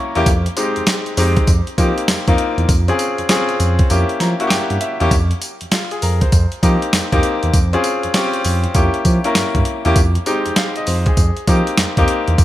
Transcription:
Already playing: A#3 C#4 E4 G4 A#4 E5 G5 A#5 C#6
0.15 E2 A#3 C#4 E4 G4, closed hi-hat
0.26 F2, kick, closed hi-hat, tambourine
0.46 closed hi-hat
0.57 G#3 C4 D#4 G4, closed hi-hat, tambourine
0.76 F2, closed hi-hat
0.87 snare, closed hi-hat, tambourine
1.06 closed hi-hat
1.17 F2 G#3 C4 D#4 G4, open hi-hat, tambourine
1.36 kick, closed hi-hat
1.47 F2, kick, closed hi-hat, tambourine
1.67 closed hi-hat
1.78 F3 A#3 C4 D#4 G4, kick, closed hi-hat, tambourine
1.98 closed hi-hat
2.08 F2, snare, closed hi-hat, tambourine
2.28 F2 A#3 C4 D#4 F4, kick, closed hi-hat
2.38 closed hi-hat
2.58 E2, closed hi-hat
2.69 F2, kick, closed hi-hat, tambourine
2.88 C4 C#4 F4 G#4, closed hi-hat
2.99 closed hi-hat, tambourine
3.18 F2, closed hi-hat
3.29 C4 C#4 F4 G#4, snare, closed hi-hat, tambourine
3.49 closed hi-hat
3.60 F2, closed hi-hat, tambourine
3.79 kick, closed hi-hat
3.90 F2 A#3 C#4 E4 G4, closed hi-hat, tambourine
4.09 closed hi-hat
4.20 F3 A#5, snare, closed hi-hat, tambourine
4.40 A#3 C#4 E4 F#4, closed hi-hat
4.47 G2 G4 G5, snare, closed hi-hat, tambourine
4.70 G2, closed hi-hat
4.81 E5, closed hi-hat
5.00 E2 A#3 C#4 E4 G4, closed hi-hat
5.11 F2, kick, closed hi-hat, tambourine
5.31 closed hi-hat
5.42 closed hi-hat, tambourine
5.61 F2, closed hi-hat
5.71 F4, snare, closed hi-hat, tambourine
5.91 G#4, closed hi-hat
6.02 F2 A#4, open hi-hat, tambourine
6.21 C5, kick, closed hi-hat
6.32 F2, kick, closed hi-hat, tambourine
6.52 closed hi-hat
6.63 F3 A#3 C4 D#4 G4, kick, closed hi-hat, tambourine
6.82 closed hi-hat
6.93 F2, snare, closed hi-hat, tambourine
7.12 F2 A#3 C4 D#4 G4, kick, closed hi-hat
7.23 closed hi-hat
7.43 E2, closed hi-hat
7.54 F2, kick, closed hi-hat, tambourine
7.73 C4 C#4 F4 G#4, closed hi-hat
7.84 closed hi-hat, tambourine
8.03 F2, closed hi-hat
8.14 C4 C#4 F4 G4, snare, closed hi-hat, tambourine
8.33 closed hi-hat
8.44 F2, open hi-hat, tambourine
8.64 closed hi-hat
8.74 F2 A#3 C#4 E4 G4, kick, closed hi-hat, tambourine
8.94 closed hi-hat
9.05 F3, kick, closed hi-hat, tambourine
9.24 A#3 C#4 E4 A#4, closed hi-hat
9.35 G2, snare, closed hi-hat, tambourine
9.55 G2, kick, closed hi-hat
9.65 closed hi-hat
9.85 E2 A#3 C#4 E4 G4, closed hi-hat
9.96 F2, kick, closed hi-hat, tambourine
10.15 closed hi-hat
10.26 G#3 C4 D#4 G4, closed hi-hat, tambourine
10.46 F2, closed hi-hat
10.56 F5, snare, closed hi-hat, tambourine
10.76 D#5, closed hi-hat
10.87 F2 C5, open hi-hat, tambourine
11.06 G#4, kick, closed hi-hat
11.17 F2, kick, closed hi-hat, tambourine
11.37 closed hi-hat
11.47 F3 A#3 C4 D#4 G4, kick, closed hi-hat, tambourine
11.67 closed hi-hat
11.77 F2, snare, closed hi-hat, tambourine
11.97 F2 A#3 C4 D#4 G4, kick, closed hi-hat
12.08 closed hi-hat
12.28 E2, closed hi-hat
12.38 F2, kick, closed hi-hat, tambourine

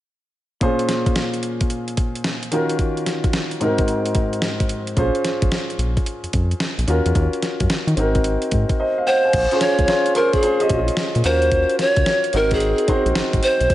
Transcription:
0.61 A#2 C#4 F4 G#4 C5, kick, closed hi-hat
0.79 closed hi-hat
0.89 snare, closed hi-hat
1.06 kick, closed hi-hat
1.16 snare, closed hi-hat
1.34 closed hi-hat
1.43 closed hi-hat
1.61 kick, closed hi-hat
1.70 closed hi-hat
1.88 closed hi-hat
1.97 kick, closed hi-hat
2.15 closed hi-hat
2.24 snare, closed hi-hat
2.43 closed hi-hat
2.51 D#3 C#4 F4 F#4 A#4, closed hi-hat
2.69 closed hi-hat
2.79 kick, closed hi-hat
2.97 closed hi-hat
3.06 snare, closed hi-hat
3.24 kick, closed hi-hat
3.33 snare, closed hi-hat
3.51 closed hi-hat
3.60 G#2 C4 D#4 F#4 A#4, closed hi-hat
3.78 kick, closed hi-hat
3.88 closed hi-hat
4.06 closed hi-hat
4.15 kick, closed hi-hat
4.33 closed hi-hat
4.42 snare, closed hi-hat
4.60 kick, closed hi-hat
4.69 closed hi-hat
4.87 closed hi-hat
4.96 A#1 C#4 F4 G#4 C5, kick, closed hi-hat
5.15 closed hi-hat
5.25 snare, closed hi-hat
5.42 G#1, kick, closed hi-hat
5.52 snare, closed hi-hat
5.70 closed hi-hat
5.78 A#1, closed hi-hat
5.97 kick, closed hi-hat
6.06 closed hi-hat
6.23 F2, closed hi-hat
6.33 F2, kick, closed hi-hat
6.51 closed hi-hat
6.60 snare, closed hi-hat
6.78 A#1, closed hi-hat
6.87 D#2 C#4 F4 F#4 A#4, closed hi-hat
7.06 E2, closed hi-hat
7.15 D#2, kick, closed hi-hat
7.33 closed hi-hat
7.42 snare, closed hi-hat
7.60 F#2, kick, closed hi-hat
7.69 D#3, snare, closed hi-hat
7.87 D#3, closed hi-hat
7.97 G#1 C4 D#4 F#4 A#4, closed hi-hat
8.15 kick, closed hi-hat
8.24 closed hi-hat
8.42 closed hi-hat
8.51 G#2, kick, closed hi-hat
8.69 kick, closed hi-hat
8.80 C5 D#5
8.98 F5
9.07 C5 D#5 F#5
9.25 F5 G#5
9.33 A#1, kick, closed hi-hat, crash
9.51 C#4 F4 G#4 C5, closed hi-hat
9.61 C#4 F4 G#4 C5 C#5, snare, closed hi-hat
9.79 C#2, kick, closed hi-hat
9.88 C#4 F4 G#4 C5, snare, closed hi-hat
10.06 closed hi-hat
10.15 C#4 F4 G#4 A#4 C5, closed hi-hat
10.33 G#4, kick, closed hi-hat
10.43 C#4 F4 G#4 C5, closed hi-hat
10.60 C#4 F4 G#4 D#5, closed hi-hat
10.69 A#1, kick, closed hi-hat
10.88 closed hi-hat
10.97 snare, closed hi-hat
11.15 A#2, closed hi-hat
11.24 D#2 C#4 F4 F#4 A#4 C5, closed hi-hat
11.42 closed hi-hat
11.52 kick, closed hi-hat
11.70 closed hi-hat
11.79 C#5, snare, closed hi-hat
11.96 C#2, kick, closed hi-hat
12.06 snare, closed hi-hat
12.24 closed hi-hat
12.33 G#1 C4 D#4 F#4 A#4, closed hi-hat
12.51 G#4, kick, closed hi-hat
12.60 closed hi-hat
12.78 closed hi-hat
12.88 A#1 C4 D#4 F#4 C5, kick, closed hi-hat
13.05 A#1, closed hi-hat
13.15 G#1, snare, closed hi-hat
13.33 G#1, kick, closed hi-hat
13.43 C5, closed hi-hat
13.60 B1, closed hi-hat
13.70 A#1, kick, closed hi-hat

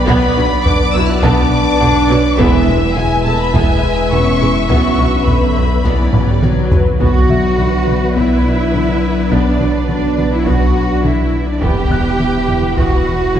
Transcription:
Already playing: B1 F#3 B3 D4 B4 D5 G5
0.07 B1 B2 B3 B5, taiko
0.37 B1 B2 F#3 D4
0.65 B1 B2 D3 D4 B4 D6, taiko low
0.94 B1 B2 F#3 E4 B4 E6
1.09 F#4 F#6
1.23 B1 B2 B3 D4 A5 D6, taiko
1.80 B1 B2 D3 F#4, taiko low
2.09 B1 B2 F#3 B4
2.38 E1 E2 E3 G#3 B3 E4 B4 E5, taiko
2.67 E1 E2 G#3
2.96 E1 E2 E3 G#3 E4 G#5, taiko low
3.25 E1 E2 G#3 A3 E4 A5
3.41 B3 B5
3.54 E1 E2 E3 G#3 B3 G#5, taiko
4.12 E1 E2 E3 B3 C#4 C#6, taiko low
4.40 E1 E2 G#3 E4
4.69 B1 B2 D3 F#3 B3 C#4 F#4 C#6, taiko
4.98 B1 B2 F#3 C#4 D4 C#6
5.25 B1 B2 D3 B3 B4 B5, taiko low
5.56 B1 B2 B4
5.84 B1 B2 E3 B3 D5, taiko
6.14 F#3, taiko low-mid
6.29 G3
6.42 B1 B2 F#3 F#4, taiko mid
6.72 B1 B2 B4, taiko low
6.99 B1 F#3 B3 D4 F#4 B4 D5 F#5, taiko
7.29 B1 F#3 F#4 E5, taiko mid
7.58 B1 D3 F#4, taiko mid
7.87 B1 F#3 B4, taiko mid
8.16 B1 B3 E4 E5, taiko
8.45 B1 F#3 D4
8.74 B1 D3 D4, taiko mid
9.31 B1 B3 D4 D5, taiko
9.60 B1 F#3 F#4, taiko mid
9.89 B1 D3 D4 F#4 D5, taiko mid
10.17 B1 F#3 B4, taiko mid
10.33 E4 E5
10.46 B1 B3 F#4 F#5, taiko
10.75 B1 F#3 D4
11.04 B1 D3 D4 E4 E5, taiko mid
11.47 D4 D5
11.61 E1 E2 E3 B3 E4 G4 B4 E5 G5, taiko
11.90 E2 G3 B3 F#6, taiko mid
12.20 E2 E3 B3, taiko mid
12.48 E2 G3 E4, taiko mid
12.77 E2 E3 B3 F#4 F#5, taiko
13.06 E2 G3
13.35 E2 E3 G3, taiko mid

